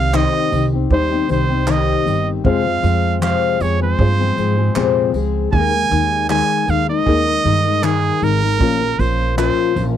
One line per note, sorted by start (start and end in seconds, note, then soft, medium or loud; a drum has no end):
0.00 0.24 C2 loud
0.00 0.12 D#3 medium
0.00 0.22 G3 medium
0.00 0.12 C4 medium
0.00 0.22 C4 medium
0.00 0.13 D#4 medium
0.00 0.22 D#4 medium
0.00 0.13 G4 medium
0.00 0.23 C5 medium
0.00 0.17 F5 loud
0.12 0.51 C3 medium
0.12 0.50 D#3 medium
0.12 0.51 C4 medium
0.12 0.52 D#4 medium
0.12 0.53 G4 medium
0.12 0.66 D#5 medium
0.12 clap loud
0.51 0.84 C2 medium
0.51 0.73 D#3 medium
0.51 0.73 C4 medium
0.51 0.72 D#4 medium
0.51 0.71 G4 medium
0.51 tambourine medium
0.73 1.12 C4 soft
0.73 1.11 D#4 soft
0.73 1.09 G4 medium
0.90 1.22 D#2 medium
0.90 2.00 G3 medium
0.90 2.00 C4 medium
0.90 2.01 D#4 medium
0.90 2.01 C5 medium
0.90 1.28 C5 medium
0.90 kick medium
1.11 1.28 C4 soft
1.11 1.28 D#4 soft
1.11 1.28 G4 medium
1.28 1.92 C2 medium
1.28 1.50 D#3 medium
1.28 1.50 C4 medium
1.28 1.49 D#4 medium
1.28 1.48 G4 medium
1.28 1.72 C5 medium
1.28 tambourine medium
1.49 1.66 C4 soft
1.49 1.66 D#4 medium
1.49 1.67 G4 medium
1.66 2.05 C3 medium
1.66 2.04 D#3 medium
1.66 2.05 C4 medium
1.66 2.06 D#4 medium
1.66 2.06 G4 medium
1.66 clap loud
1.71 2.29 D#5 medium
2.05 2.38 G1 medium
2.05 2.44 D#3 medium
2.05 2.44 C4 medium
2.05 2.45 D#4 medium
2.05 2.46 G4 medium
2.05 tambourine medium
2.44 2.66 F2 medium
2.44 2.76 F2 medium
2.44 2.66 C3 medium
2.44 2.66 F3 medium
2.44 3.54 G#3 medium
2.44 2.66 G#3 medium
2.44 3.54 C4 medium
2.44 2.65 C4 medium
2.44 3.54 F4 medium
2.44 2.64 G#4 medium
2.44 3.55 C5 medium
2.44 3.18 F5 loud
2.44 kick loud
2.65 2.81 F3 soft
2.65 2.82 G#3 soft
2.65 2.83 C4 soft
2.65 2.83 G#4 soft
2.82 3.32 F2 loud
2.82 3.20 F3 medium
2.82 3.20 G#3 medium
2.82 3.21 C4 medium
2.82 3.21 G#4 medium
2.82 tambourine medium
3.20 3.59 F2 medium
3.20 3.60 C3 medium
3.20 3.58 F3 medium
3.20 3.59 G#3 medium
3.20 3.60 C4 medium
3.20 3.60 G#4 medium
3.20 3.63 F5 medium
3.20 clap loud
3.59 3.92 F2 loud
3.59 3.81 F3 medium
3.59 3.81 G#3 medium
3.59 3.80 C4 medium
3.59 3.79 G#4 medium
3.59 3.82 C#5 medium
3.59 tambourine medium
3.80 4.21 F3 soft
3.80 4.20 G#3 soft
3.80 4.19 C4 soft
3.80 4.18 G#4 medium
3.80 5.11 C5 medium
3.99 4.30 G2 loud
3.99 5.09 C4 medium
3.99 5.09 F4 medium
3.99 5.08 G#4 medium
3.99 5.09 C5 medium
3.99 kick loud
4.19 4.35 F3 soft
4.19 4.36 G#3 soft
4.19 4.37 C4 medium
4.19 4.37 G#4 medium
4.36 4.69 G#2 medium
4.36 4.58 F3 medium
4.36 4.58 G#3 medium
4.36 4.57 C4 medium
4.36 4.56 G#4 medium
4.36 tambourine medium
4.57 4.74 F3 soft
4.57 4.75 G#3 soft
4.57 4.75 C4 medium
4.57 4.75 G#4 medium
4.75 5.14 F2 medium
4.75 5.07 A#2 medium
4.75 5.14 C3 medium
4.75 5.11 F3 medium
4.75 5.13 G#3 medium
4.75 5.13 C4 loud
4.75 5.15 G#4 medium
4.75 clap loud
5.13 5.46 C#2 medium
5.13 5.51 F3 medium
5.13 5.51 G#3 medium
5.13 5.53 C4 medium
5.13 5.53 G#4 medium
5.13 tambourine medium
5.51 5.84 D#2 loud
5.51 5.73 D#3 medium
5.51 6.62 G#3 medium
5.51 5.74 G#3 medium
5.51 6.62 A#3 medium
5.51 5.73 D#4 medium
5.51 6.63 D#4 medium
5.51 5.61 G#4 medium
5.51 5.71 A#4 medium
5.51 6.26 G#5 loud
5.51 kick loud
5.60 6.66 A#4 medium
5.73 5.90 G#3 soft
5.73 5.90 D#4 soft
5.73 5.91 A#4 medium
5.89 6.40 D#2 loud
5.89 6.28 D#3 medium
5.89 6.28 G#3 medium
5.89 6.29 D#4 medium
5.89 6.30 A#4 medium
5.89 tambourine medium
6.29 6.66 D#3 medium
6.29 6.67 G#3 medium
6.29 6.68 D#4 medium
6.29 6.69 A#4 medium
6.29 6.71 G#5 loud
6.29 clap loud
6.67 6.99 D#2 loud
6.67 6.89 D#3 medium
6.67 6.89 G#3 medium
6.67 6.88 D#4 medium
6.67 6.87 A#4 medium
6.67 6.89 F5 loud
6.67 tambourine medium
6.88 7.28 G#3 medium
6.88 7.27 D#4 medium
6.88 7.25 A#4 medium
6.88 7.86 D#5 loud
7.06 7.38 D#2 loud
7.06 8.16 A#3 medium
7.06 8.16 D#4 medium
7.06 8.16 G#4 medium
7.06 8.17 A#4 medium
7.06 kick medium
7.27 7.44 G#3 soft
7.27 7.44 D#4 soft
7.27 7.45 A#4 medium
7.43 8.08 G2 medium
7.43 7.65 D#3 medium
7.43 7.66 G#3 medium
7.43 7.65 D#4 medium
7.43 7.63 A#4 medium
7.43 tambourine medium
7.64 7.84 G#3 medium
7.64 7.82 D#4 medium
7.64 7.83 A#4 medium
7.82 8.20 D#3 medium
7.82 8.22 D#4 medium
7.82 8.25 G#4 loud
7.82 8.22 A#4 medium
7.82 clap loud
8.21 8.61 G#1 medium
8.21 8.43 D#3 medium
8.21 8.43 G#3 medium
8.21 8.43 D#4 medium
8.21 9.01 A#4 loud
8.21 8.41 A#4 medium
8.21 tambourine medium
8.42 8.59 G#3 soft
8.42 8.60 D#4 soft
8.42 8.60 A#4 soft
8.59 8.92 A#1 loud
8.59 8.81 A#2 medium
8.59 8.81 F3 medium
8.59 9.70 A#3 medium
8.59 8.81 C#4 medium
8.59 9.70 C#4 medium
8.59 8.80 F4 medium
8.59 9.71 F4 medium
8.59 8.79 A#4 medium
8.59 9.71 A#4 medium
8.59 kick loud
8.80 8.98 F4 soft
8.80 8.98 A#4 soft
8.98 9.48 A#1 loud
8.98 9.36 F3 medium
8.98 9.36 C#4 medium
8.98 9.37 F4 medium
8.98 9.37 A#4 medium
8.98 9.37 C5 loud
8.98 tambourine medium
9.37 9.76 A#2 medium
9.37 9.74 F3 medium
9.37 9.75 C#4 medium
9.37 9.76 F4 medium
9.37 9.77 A#4 medium
9.37 9.85 C5 loud
9.37 clap loud
9.75 9.97 A#1 loud
9.75 9.97 F3 medium
9.75 9.97 C#4 medium
9.75 9.96 F4 medium
9.75 9.95 A#4 medium
9.75 tambourine medium